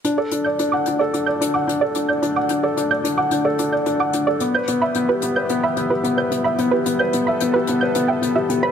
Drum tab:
HH |xxxxxxxx|xxxxxxxx|xxxxxxxx|xxxxxxxx|